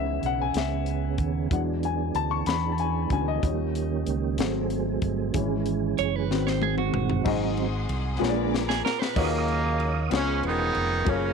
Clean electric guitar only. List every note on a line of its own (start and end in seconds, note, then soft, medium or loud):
5.99 6.16 C#5 medium
6.16 6.47 B4 medium
6.47 6.62 C5 medium
6.63 6.78 G#4 medium
6.78 7.24 F#4 medium
8.69 8.84 G#4 medium
8.85 8.99 A#4 medium
8.99 9.30 B4 medium